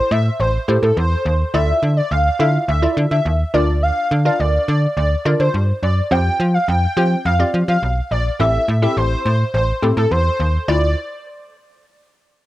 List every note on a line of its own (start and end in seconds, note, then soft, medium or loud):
0.00 0.18 E4 medium
0.00 0.18 G4 medium
0.00 0.18 A4 medium
0.00 0.18 C5 medium
0.11 0.30 A2 loud
0.11 0.22 E5 medium
0.40 0.58 A1 loud
0.40 0.51 C5 medium
0.68 0.78 A2 loud
0.68 1.11 E4 medium
0.68 1.11 G4 medium
0.68 1.11 A4 medium
0.68 1.11 C5 medium
0.83 0.92 A2 loud
0.83 0.94 A4 medium
0.97 1.15 E2 loud
0.97 1.37 C5 loud
1.25 1.44 D#2 loud
1.54 1.73 D2 loud
1.54 1.96 E4 medium
1.54 1.96 F4 medium
1.54 1.96 A4 medium
1.54 1.96 D5 medium
1.54 1.76 E5 loud
1.83 2.01 D3 medium
1.97 2.08 D5 medium
2.11 2.30 D2 loud
2.11 2.33 F5 medium
2.39 2.58 D3 loud
2.39 2.61 E4 medium
2.39 2.61 F4 medium
2.39 2.61 A4 medium
2.39 2.61 E5 medium
2.39 2.51 F5 medium
2.68 2.87 D2 loud
2.68 2.79 E5 loud
2.82 3.32 E4 medium
2.82 3.32 F4 medium
2.82 3.32 A4 medium
2.82 3.32 D5 medium
2.97 3.06 D3 loud
3.11 3.20 D3 medium
3.11 3.22 E5 medium
3.25 3.44 D#2 loud
3.54 3.91 D2 loud
3.54 4.11 D4 medium
3.54 4.11 F4 medium
3.54 4.11 A#4 medium
3.54 3.65 D5 medium
3.54 4.11 D5 medium
3.83 4.05 F5 loud
4.11 4.30 D3 loud
4.25 4.75 D4 medium
4.25 4.75 F4 medium
4.25 4.75 A#4 medium
4.25 4.75 D5 medium
4.25 4.37 F5 medium
4.40 4.58 D2 medium
4.40 4.62 D5 medium
4.68 4.87 D3 loud
4.68 4.80 D5 medium
4.97 5.15 D2 loud
4.97 5.08 D5 medium
5.25 5.35 D3 loud
5.25 5.68 D4 medium
5.25 5.68 F4 medium
5.25 5.68 A#4 medium
5.25 5.68 D5 medium
5.40 5.49 D3 medium
5.40 5.51 C5 medium
5.54 5.73 G2 medium
5.83 6.01 F#2 medium
5.83 5.94 D5 medium
6.11 6.30 F2 loud
6.11 6.53 C4 medium
6.11 6.53 F4 medium
6.11 6.54 G4 medium
6.11 6.54 C5 medium
6.11 6.33 G5 loud
6.40 6.58 F3 loud
6.54 6.65 F5 medium
6.68 6.87 F2 loud
6.68 6.91 G5 medium
6.97 7.15 F3 loud
6.97 7.18 C4 medium
6.97 7.18 F4 medium
6.97 7.18 G4 medium
6.97 7.18 C5 medium
6.97 7.08 G5 medium
7.25 7.44 F2 loud
7.25 7.37 F5 medium
7.39 7.89 C4 medium
7.39 7.89 F4 medium
7.39 7.89 G4 medium
7.39 7.89 D5 medium
7.54 7.63 F3 loud
7.68 7.78 F3 loud
7.68 7.79 F5 medium
7.82 8.01 B1 medium
8.11 8.30 A#1 medium
8.11 8.22 D5 loud
8.39 8.58 A1 loud
8.39 8.61 C4 medium
8.39 8.61 E4 medium
8.39 8.61 G4 medium
8.39 8.61 A4 medium
8.39 8.62 E5 loud
8.68 8.87 A2 loud
8.82 9.32 C4 medium
8.82 9.32 E4 medium
8.82 9.32 G4 medium
8.82 9.32 A4 medium
8.82 8.94 E5 medium
8.97 9.15 A1 loud
8.97 9.19 C5 medium
9.25 9.44 A2 loud
9.25 9.37 C5 medium
9.54 9.73 A1 loud
9.54 9.65 C5 medium
9.82 9.92 A2 loud
9.82 10.25 C4 medium
9.82 10.25 E4 medium
9.82 10.25 G4 medium
9.82 10.25 A4 medium
9.97 10.06 A2 loud
9.97 10.08 A4 medium
10.11 10.30 E2 loud
10.11 10.51 C5 loud
10.40 10.58 D#2 loud
10.68 10.95 D2 loud
10.68 10.95 E4 medium
10.68 10.95 F4 medium
10.68 10.95 D5 medium
10.68 10.95 D5 loud